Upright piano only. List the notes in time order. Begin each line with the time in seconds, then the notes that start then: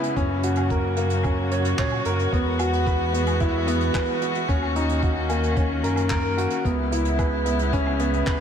Already playing: B3 C#4 E4 B4
0.16 C#4
0.44 F#4
0.71 A#4
0.97 A#3
1.24 C#4
1.51 C#5
1.79 C#5
2.06 A#4
2.33 B3
2.60 F#4
2.87 B4
3.13 B3
3.41 E4
3.67 B3
3.94 B4
4.22 F#4
4.49 C#4
4.76 D#4
5.03 F#4
5.30 A#3
5.57 C#4
5.84 A#4
6.11 A#4
6.38 F#4
6.65 B3
6.92 E4
7.19 B4
7.46 B3
7.73 C#4
8.00 B3
8.27 B4